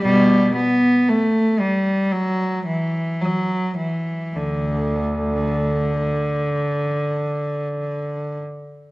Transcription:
\new Staff \with { instrumentName = "Cello" } { \clef bass \time 4/4 \key d \major \tempo 4 = 53 << { g8 b8 a8 g8 fis8 e8 fis8 e8 | d2.~ d8 r8 | } \\ { b,8 r2. r8 | d,4. r2 r8 | } >> }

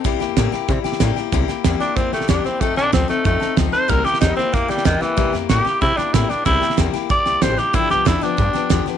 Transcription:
<<
  \new Staff \with { instrumentName = "Steel-string acoustic guitar" } { \time 4/4 \key c \mixolydian \tempo 4 = 187 <c g bes e' g'>8 <bes e' g'>8 <c g bes e' g'>8 <bes e' g'>8 <g bes e' g'>8 <bes e' g'>8 <c g bes e' g'>8 <bes e' g'>8 | <c g bes e' g'>8 <bes e' g'>8 <c g bes e' g'>8 <bes e' g'>8 <g bes e' g'>8 <bes e' g'>8 <c g bes e' g'>8 <bes e' g'>8 | <f c' ees' a'>8 <c' ees' a'>8 <f c' ees' a'>8 <c' ees' a'>8 <f c' ees' a'>8 <c' ees' a'>8 <f c' ees' a'>8 <c' ees' a'>8 | <c g bes e' g'>8 <bes e' g'>8 <c g bes e' g'>8 <bes e' g'>8 <g bes e' g'>8 <bes e' g'>8 <c g bes e' g'>8 <bes e' g'>8 |
<c g bes e' g'>8 <bes e' g'>8 <c g bes e' g'>8 <e' g'>8 <g bes e' g'>8 <bes e' g'>8 <c g bes e' g'>8 <bes e' g'>8 | <c g bes e' g'>8 <bes e' g'>8 <c g bes e' g'>8 <bes e' g'>8 <g bes e' g'>8 <bes e' g'>8 <c g bes e' g'>8 <bes e' g'>8 | <g, d f b d' g'>8 <f b d' g'>8 <g, d f b d' g'>8 <f b d' g'>8 <f b d' g'>8 <f b d' g'>8 <g, d f b d' g'>8 <f b d' g'>8 | }
  \new Staff \with { instrumentName = "Tenor saxophone" } { \time 4/4 \key c \mixolydian r1 | r4. d'8 c'8 a8 d'8 c'8 | a8 d'8 c'8 a8 a4 r8 c''8 | bes'8 g'8 ees'8 c'8 bes8 g8 ees8 e8~ |
e8 r8 g'4 e'8 d'8 e'8 d'8 | e'4 r4 d''4 c''8 g'8 | e'8 g'8 e'8 d'2 r8 | }
  \new Staff \with { instrumentName = "Upright bass" } { \clef bass \time 4/4 \key c \mixolydian c,8 f,8 a,8 r8 c8 r8 a,8 r8 | c,8 r8 e,8 r8 f,8 c,8 e,8 r8 | f,,8 bes,,8 d,8 r8 f,8 r8 d,8 r8 | c,8 r8 e,8 r8 f,8 c,8 e,8 r8 |
c,8 f,8 a,8 r8 c8 r8 a,8 r8 | c,8 r8 e,8 r8 f,8 c,8 a,,8 r8 | g,,8 c,8 e,8 r8 g,8 r8 e,8 r8 | }
  \new DrumStaff \with { instrumentName = "Drums" } \drummode { \time 4/4 <bd sn>8 sn8 <hhp bd sn>8 sn8 <bd sn>8 sn16 sn16 <hhp bd sn>8 sn8 | <bd sn>8 sn8 <hhp bd sn>8 sn8 <bd sn>8 sn16 sn16 <hhp bd sn>8 sn8 | <bd sn>8 sn8 <hhp bd sn>8 sn8 <bd sn>8 sn8 <hhp bd sn>8 sn8 | <bd sn>8 sn16 sn16 <hhp bd sn>8 sn8 <bd sn>8 sn16 sn16 <hhp bd sn>8 sn8 |
<bd sn>8 sn8 <hhp bd sn>8 sn8 <bd sn>8 sn8 <hhp bd sn>8 sn8 | <bd sn>8 sn16 sn16 <hhp bd sn>8 sn8 <bd sn>8 sn8 <hhp bd sn>8 sn8 | <bd sn>8 sn8 <hhp bd sn>8 sn8 <bd sn>8 sn8 <hhp bd sn>8 sn8 | }
>>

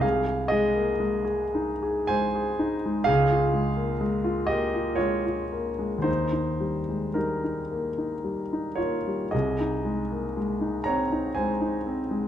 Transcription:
<<
  \new Staff \with { instrumentName = "Grand piano" } { \time 3/4 \key aes \major \tempo 4 = 59 <aes' f''>8 <aes' ees''>4. <c'' aes''>4 | <aes' f''>4. <g' ees''>8 <f' des''>4 | <ees' c''>4 <ees' bes'>4. <f' des''>8 | <aes' ees''>4. <des'' bes''>8 <c'' aes''>4 | }
  \new Staff \with { instrumentName = "Grand piano" } { \time 3/4 \key aes \major c,16 aes'16 aes16 bes16 aes16 aes'16 ees'16 aes'16 aes16 aes'16 ees'16 aes16 | des,16 f'16 aes16 bes16 aes16 f'16 bes16 f'16 aes16 f'16 bes16 aes16 | ees,16 ees'16 g16 aes16 g16 ees'16 bes16 ees'16 g16 ees'16 bes16 g16 | c,16 ees'16 aes16 bes16 aes16 ees'16 c'16 ees'16 aes16 ees'16 c'16 aes16 | }
>>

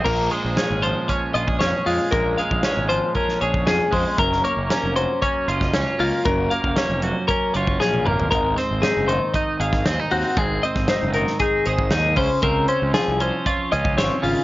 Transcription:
<<
  \new Staff \with { instrumentName = "Clean electric guitar" } { \time 4/4 \key bes \minor \tempo 4 = 116 bes'8 c''8 aes'8 c''8 des''8 ees''8 des''8 f'8 | bes'8 f''8 des''8 c''8 bes'8 des''8 aes'8 c''8 | bes'8 des''8 bes'8 c''8 des''8 ees''8 des''8 f'8 | bes'8 f''8 des''8 c''8 bes'8 des''8 aes'8 bes'8 |
bes'8 c''8 aes'8 c''8 ees''8 f''8 ees''8 ges'8 | aes'8 ees''8 c''8 bes'8 aes'8 c''8 aes'8 c''8 | bes'8 c''8 aes'8 c''8 des''8 ees''8 des''8 f'8 | }
  \new Staff \with { instrumentName = "Clean electric guitar" } { \time 4/4 \key bes \minor << { aes8 aes8 des'4 des'8 f'16 aes'16 des'8 aes8~ | aes8 aes8 des'4 des'8 aes'8 des'8 aes8 | r8 bes8 des'4 des'8 f'8 des'8 bes8 | r8 bes8 des'4 des'8 f'8 des'8 bes8 |
r8 c'8 ees'4 ees'8 aes'8 c'16 ees'16 c'8 | r8 c'8 ees'4 ees'8 aes'8 ees'8 r8 | c'8 des'4 des'8 f'8 des'8 c'8 r8 | } \\ { bes,4. f2~ f8 | bes,4. f2~ f8 | ges,4. ges2~ ges8 | ges,4. ges2~ ges8 |
aes,4. ees2~ ees8 | aes,4. ees2 des8~ | des4 f2~ f8 des8 | } >> }
  \new Staff \with { instrumentName = "Fingered electric bass" } { \clef bass \time 4/4 \key bes \minor bes,,8 r16 bes,,16 r16 aes,,8 r8. bes,,8 f,16 r16 f,16 r16 | bes,,8 r16 bes,,16 r16 aes,,8 r8. bes,,8 f,16 r16 f,16 r16 | ges,,8 r16 ges,,16 r16 f,,8 r8. ges,,8 des,16 r16 des,16 r16 | ges,,8 r16 ges,,16 r16 f,,8 r8. ges,,8 bes,,8 aes,,8 |
aes,,8 r16 aes,,16 r16 ges,,8 r8. aes,,8 ees,16 r16 ees,16 r16 | aes,,8 r16 aes,,16 r16 ges,,8 r8. aes,,8 ees,8 des,16 r16 | des,8 r16 des,16 r16 c,8 r8. des,8 aes,,16 r16 aes,,16 r16 | }
  \new DrumStaff \with { instrumentName = "Drums" } \drummode { \time 4/4 <cymc bd>8 hh8 <hh sn>8 hh8 <hh bd>8 hh16 bd16 <hh sn>8 hho8 | <hh bd>8 hh16 bd16 <hh sn>8 hh8 <hh bd>16 sn16 hh16 bd16 <hh sn>8 <hho bd>8 | <hh bd>16 sn16 hh8 <hh sn>8 hh8 <hh bd>8 hh16 <bd sn>16 <hh sn>8 hho8 | <hh bd>8 hh16 bd16 <hh sn>8 hh8 <hh bd>8 hh16 bd16 sn16 tommh16 toml16 tomfh16 |
<hh bd>8 <hh sn>8 <hh sn>8 hh8 <hh bd>8 hh16 <bd sn>16 <hh sn>8 hho8 | <hh bd>8 hh16 <bd sn>16 <hh sn>8 hh16 sn16 <hh bd>8 hh16 bd16 <hh sn>8 <hho bd>8 | <hh bd>8 hh8 <hh sn>8 hh8 <hh bd>8 hh16 bd16 <hh sn>8 hho8 | }
>>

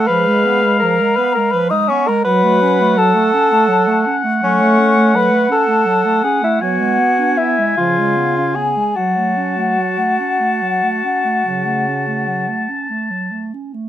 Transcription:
<<
  \new Staff \with { instrumentName = "Flute" } { \time 12/8 \key fis \minor \tempo 4. = 53 ces'''4 ais''8 ces'''16 ais''16 ces'''16 dis'''16 cis'''16 ais''16 b''4 a''4.~ a''16 r16 | cis'''4 b''8 a''4 gis''16 e''16 fis''4 e''8 eis''4 gis''8 | fis''1~ fis''8 r4. | }
  \new Staff \with { instrumentName = "Oboe" } { \time 12/8 \key fis \minor f''2~ f''8 r8 fis''2.~ | fis''2. gis''2~ gis''8 r8 | a''1~ a''4. r8 | }
  \new Staff \with { instrumentName = "Bassoon" } { \time 12/8 \key fis \minor ces''4 ais'8 ces''16 ais'16 ces''16 dis'16 cis'16 ais'16 b'4 a'4.~ a'16 r16 | cis'4 b'8 a'4 gis'16 e'16 fis'4 e'8 eis'4 gis'8 | fis'1~ fis'8 r4. | }
  \new Staff \with { instrumentName = "Clarinet" } { \time 12/8 \key fis \minor f16 aes16 ces'16 aes16 f16 aes16 ces'16 aes16 f16 aes16 ces'16 aes16 fis16 a16 cis'16 a16 fis16 a16 cis'16 a16 fis16 a16 cis'16 a16 | fis16 a16 cis'16 a16 fis16 a16 cis'16 a16 fis16 a16 cis'16 a16 fis16 gis16 b16 d'16 b16 gis16 eis16 gis16 b16 cis'16 b16 gis16 | fis16 a16 cis'16 a16 fis16 a16 cis'16 a16 fis16 a16 cis'16 a16 fis16 a16 cis'16 a16 fis16 a16 cis'16 a16 fis16 a16 cis'16 a16 | }
  \new Staff \with { instrumentName = "French horn" } { \clef bass \time 12/8 \key fis \minor aes4. r4. fis4. r4. | a4. r4. b4. cis4. | fis4. r4. cis4. r4. | }
>>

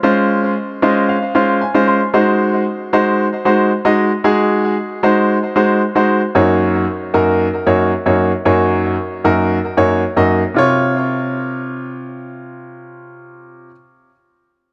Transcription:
\new Staff \with { instrumentName = "Grand piano" } { \time 4/4 \key des \major \tempo 4 = 114 << { r4. ees''8 f''8 f''8 aes''8 c'''8 | r1 | r1 | r1 |
r1 | r1 | r1 | } \\ { <aes des' f' c''>4 r8 <aes des' f' c''>8 r8 <aes des' f' c''>8 r16 <aes des' f' c''>8 r16 | <aes ees' ges' c''>4 r8 <aes ees' ges' c''>8 r8 <aes ees' ges' c''>8 r16 <aes ees' ges' ees''>8 r16 | <aes ees' ges' aes'>4 r8 <aes ees' ges' c''>8 r8 <aes ees' ges' c''>8 r16 <aes ees' ges' c''>8 r16 | <ges, bes ees' ges' des''>4 r8 <ges, bes ees' ges' bes'>8 r8 <ges, bes ees' ges' des''>8 r16 <ges, bes ees' ges' des''>8 r16 |
<ges, bes ees' ges' des''>4 r8 <ges, bes ees' ges' bes'>8 r8 <ges, bes ees' ges' des''>8 r16 <ges, bes ees' ges' ees''>8 r16 | <c f' des''>1~ | <c f' des''>1 | } >> }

